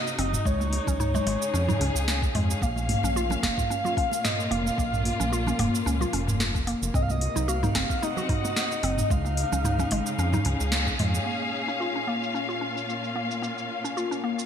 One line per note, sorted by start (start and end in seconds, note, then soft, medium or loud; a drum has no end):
0.00 0.45 C3 medium
0.00 0.45 C4 medium
0.00 3.45 D#4 medium
0.00 0.46 F#4 medium
0.00 0.46 D#5 medium
0.00 0.48 D#5 loud
0.07 shaker soft
0.18 0.38 F#1 loud
0.18 0.44 C4 loud
0.18 open hi-hat medium
0.33 mid tom medium
0.33 muted conga soft
0.33 shaker medium
0.45 0.80 C#2 loud
0.45 2.62 C#3 medium
0.45 0.86 G#3 medium
0.45 1.00 C#5 loud
0.45 kick loud
0.45 shaker medium
0.61 high conga medium
0.61 shaker soft
0.72 open hi-hat medium
0.72 muted conga medium
0.72 high conga medium
0.87 1.21 C#2 medium
0.87 0.99 C#4 medium
0.87 kick medium
0.87 low conga medium
0.87 shaker medium
1.00 1.13 D#4 medium
1.00 2.31 C#5 medium
1.00 mid tom medium
1.00 high conga medium
1.00 shaker medium
1.08 6.94 C#4 medium
1.14 1.26 G#3 loud
1.14 3.34 G#4 medium
1.14 muted conga medium
1.14 low conga medium
1.14 shaker soft
1.26 1.37 G#1 medium
1.26 1.53 G#3 loud
1.26 open hi-hat medium
1.26 high conga medium
1.34 6.94 F5 medium
1.42 shaker medium
1.54 1.73 F2 medium
1.54 1.68 C#4 medium
1.54 shaker medium
1.68 1.76 D#4 medium
1.68 mid tom medium
1.68 low conga loud
1.68 shaker soft
1.80 1.91 C#2 loud
1.80 1.95 C#4 medium
1.80 open hi-hat medium
1.95 2.29 C#2 medium
1.95 shaker medium
2.08 snare medium
2.08 shaker medium
2.22 kick loud
2.22 shaker soft
2.35 2.54 F2 medium
2.35 2.61 G#3 loud
2.35 mid tom medium
2.35 open hi-hat medium
2.51 shaker medium
2.62 2.96 A#1 loud
2.62 6.94 A#2 medium
2.62 3.02 A#3 medium
2.62 3.39 F5 loud
2.62 kick loud
2.62 shaker medium
2.73 7.73 A#3 medium
2.73 high conga medium
2.78 shaker soft
2.89 mid tom medium
2.89 open hi-hat medium
2.89 muted conga medium
2.89 high conga medium
3.03 3.37 A#1 medium
3.03 3.15 C#4 medium
3.03 low conga medium
3.03 shaker medium
3.15 3.29 F4 medium
3.15 high conga medium
3.15 shaker medium
3.30 3.42 C#4 medium
3.30 muted conga medium
3.30 low conga medium
3.30 shaker soft
3.43 3.53 F1 medium
3.43 3.69 A#3 loud
3.43 4.26 F5 loud
3.43 kick medium
3.43 snare medium
3.43 open hi-hat medium
3.43 high conga medium
3.58 kick loud
3.58 mid tom medium
3.58 shaker medium
3.70 3.84 C#4 medium
3.70 muted conga medium
3.70 shaker medium
3.85 3.92 F4 medium
3.85 6.94 F4 medium
3.85 low conga medium
3.85 shaker soft
3.97 4.11 C#4 medium
3.97 kick loud
3.97 open hi-hat medium
4.12 muted conga medium
4.12 shaker medium
4.24 4.53 D#5 loud
4.24 snare medium
4.24 mid tom medium
4.24 shaker medium
4.40 shaker soft
4.51 4.70 F1 loud
4.51 4.77 A#3 medium
4.51 5.32 F5 loud
4.51 open hi-hat medium
4.66 muted conga soft
4.66 shaker medium
4.78 5.12 A#1 medium
4.78 5.18 A#3 medium
4.78 kick loud
4.78 shaker medium
4.93 mid tom medium
4.93 high conga medium
4.93 shaker soft
5.05 open hi-hat medium
5.05 muted conga medium
5.05 high conga medium
5.20 5.53 A#1 medium
5.20 5.32 C#4 medium
5.20 low conga medium
5.20 shaker medium
5.32 5.46 F4 medium
5.32 high conga medium
5.32 shaker medium
5.47 5.58 C#4 medium
5.47 muted conga medium
5.47 low conga medium
5.47 shaker soft
5.59 5.69 F1 medium
5.59 5.85 A#3 loud
5.59 mid tom medium
5.59 open hi-hat medium
5.59 high conga medium
5.75 shaker medium
5.86 6.06 C#2 loud
5.86 6.00 C#4 medium
5.86 shaker medium
6.01 6.08 F4 medium
6.01 low conga medium
6.01 shaker soft
6.13 6.75 F1 medium
6.13 6.27 C#4 medium
6.13 open hi-hat medium
6.28 mid tom medium
6.28 shaker medium
6.40 snare medium
6.40 shaker medium
6.55 kick loud
6.55 shaker soft
6.67 6.93 A#3 loud
6.67 open hi-hat medium
6.82 6.90 F1 loud
6.82 shaker medium
6.94 7.29 C2 loud
6.94 9.11 C3 medium
6.94 7.34 C4 medium
6.94 7.04 D#5 loud
6.94 kick loud
6.94 mid tom medium
6.94 shaker medium
7.02 7.12 F5 medium
7.10 7.48 D#5 loud
7.10 high conga medium
7.10 shaker soft
7.21 9.11 C4 medium
7.21 open hi-hat medium
7.21 muted conga soft
7.21 high conga medium
7.36 7.69 C2 medium
7.36 7.48 D#4 medium
7.36 low conga medium
7.36 shaker medium
7.48 7.61 F#4 medium
7.48 8.05 F5 loud
7.48 high conga medium
7.48 shaker medium
7.63 7.74 D#4 medium
7.63 mid tom medium
7.63 muted conga medium
7.63 low conga medium
7.63 shaker soft
7.74 7.85 F#1 medium
7.74 8.01 C4 loud
7.74 12.57 D#4 medium
7.74 kick medium
7.74 snare medium
7.74 open hi-hat medium
7.74 high conga medium
7.90 9.10 F#4 medium
7.90 9.10 F#5 medium
7.90 kick medium
7.90 shaker medium
8.02 8.16 D#4 medium
8.02 8.57 D#5 loud
8.02 muted conga medium
8.02 shaker medium
8.17 8.24 F#4 medium
8.17 low conga medium
8.17 shaker soft
8.29 8.43 D#4 medium
8.29 kick loud
8.29 mid tom medium
8.29 open hi-hat medium
8.45 muted conga medium
8.45 shaker medium
8.56 9.13 D#5 loud
8.56 snare medium
8.56 shaker medium
8.72 shaker soft
8.83 9.03 F#1 loud
8.83 9.09 C4 loud
8.83 open hi-hat medium
8.98 mid tom medium
8.98 muted conga soft
8.98 shaker medium
9.10 9.45 C#2 loud
9.10 11.27 C#3 medium
9.10 9.51 G#3 medium
9.10 10.73 F5 loud
9.10 kick loud
9.10 shaker medium
9.26 high conga medium
9.26 shaker soft
9.37 open hi-hat loud
9.37 muted conga medium
9.37 high conga medium
9.50 9.86 C#2 medium
9.50 14.46 C#4 medium
9.50 9.64 C#4 medium
9.50 low conga medium
9.50 shaker medium
9.64 9.78 D#4 medium
9.64 mid tom medium
9.64 high conga medium
9.64 shaker medium
9.79 9.91 C#4 medium
9.79 muted conga medium
9.79 low conga medium
9.79 shaker soft
9.91 10.02 G#1 medium
9.91 10.17 G#3 loud
9.91 open hi-hat loud
9.91 high conga medium
10.01 12.74 G#4 medium
10.01 14.46 F5 medium
10.06 shaker medium
10.18 10.38 F2 loud
10.18 10.33 C#4 medium
10.18 shaker medium
10.33 10.40 D#4 medium
10.33 mid tom medium
10.33 low conga medium
10.33 shaker soft
10.45 10.56 C#2 loud
10.45 10.60 C#4 medium
10.45 open hi-hat loud
10.60 10.94 C#2 medium
10.60 shaker medium
10.72 snare medium
10.72 shaker medium
10.87 kick medium
10.87 shaker soft
10.99 11.19 F2 medium
10.99 11.25 G#3 medium
10.99 mid tom medium
10.99 open hi-hat loud
11.15 muted conga soft
11.15 shaker medium
11.26 14.46 A#2 medium
11.26 11.67 A#3 medium
11.26 shaker medium
11.42 shaker soft
11.47 14.46 A#3 medium
11.55 14.46 F4 medium
11.68 11.80 C#4 medium
11.68 shaker medium
11.80 11.94 F4 medium
11.80 shaker soft
11.96 12.07 C#4 medium
11.96 shaker soft
12.07 12.33 A#3 loud
12.23 shaker medium
12.34 12.49 C#4 medium
12.34 shaker soft
12.49 12.56 F4 medium
12.49 shaker soft
12.61 12.75 C#4 medium
12.77 shaker medium
12.90 shaker soft
13.04 shaker soft
13.16 13.41 A#3 medium
13.31 shaker medium
13.42 13.83 A#3 medium
13.42 shaker medium
13.58 shaker soft
13.84 13.96 C#4 medium
13.84 shaker medium
13.97 14.10 F4 medium
13.97 shaker medium
14.11 14.23 C#4 medium
14.11 shaker soft
14.24 14.46 A#3 medium
14.39 shaker medium